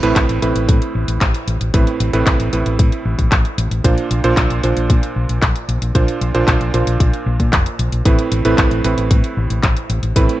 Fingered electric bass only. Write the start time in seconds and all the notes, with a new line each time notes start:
0.03 A1
0.16 A1
0.29 A1
0.42 A1
0.56 A1
0.69 A2
0.95 A1
1.08 A1
1.21 A1
1.48 A1
1.61 A1
1.74 A1
2.00 A1
2.13 A1
2.27 A1
2.40 A1
2.53 A1
2.66 A1
2.79 A2
3.05 A1
3.19 A1
3.32 A1
3.58 A1
3.71 A1
3.84 A#1
4.11 A#1
4.24 A#1
4.37 A#1
4.50 A#1
4.64 A#1
4.77 A#1
4.90 A#2
5.16 A#1
5.29 A#1
5.42 A#1
5.69 A#1
5.82 A#1
5.95 A#1
6.21 A#1
6.34 A#1
6.48 A#1
6.61 A#1
6.74 A#1
6.87 A#1
7.00 A#1
7.26 A#1
7.40 A#2
7.53 F1
7.79 A#1
7.92 A#1
8.06 A1
8.32 A1
8.45 A1
8.58 A1
8.71 A1
8.85 A1
8.98 A1
9.11 A2
9.37 A1
9.50 A1
9.63 A1
9.90 A1
10.03 A1
10.16 A1